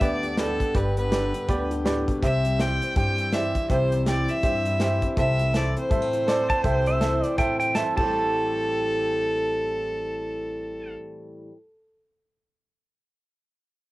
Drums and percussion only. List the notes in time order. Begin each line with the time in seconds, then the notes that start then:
0.01 kick, closed hi-hat
0.23 closed hi-hat
0.37 snare, closed hi-hat
0.60 kick, closed hi-hat
0.75 kick, closed hi-hat
0.97 closed hi-hat
1.12 snare, closed hi-hat
1.34 closed hi-hat
1.49 kick, closed hi-hat
1.71 closed hi-hat
1.86 snare, closed hi-hat
2.08 kick, closed hi-hat
2.22 kick, closed hi-hat
2.45 closed hi-hat
2.59 snare, closed hi-hat
2.82 closed hi-hat
2.96 kick, closed hi-hat
3.18 closed hi-hat
3.32 snare, closed hi-hat
3.55 kick, closed hi-hat
3.70 kick, closed hi-hat
3.92 closed hi-hat
4.06 snare, closed hi-hat
4.28 closed hi-hat
4.43 kick, closed hi-hat
4.65 closed hi-hat
4.80 snare, closed hi-hat
5.02 kick, closed hi-hat
5.17 kick, closed hi-hat
5.39 closed hi-hat
5.54 snare, closed hi-hat
5.77 closed hi-hat
5.91 kick, closed hi-hat
6.13 closed hi-hat
6.28 snare, closed hi-hat
6.50 kick, closed hi-hat
6.64 kick, closed hi-hat
6.86 closed hi-hat
7.01 snare, closed hi-hat
7.24 closed hi-hat
7.38 kick, closed hi-hat
7.61 closed hi-hat
7.75 snare, closed hi-hat
7.97 kick, crash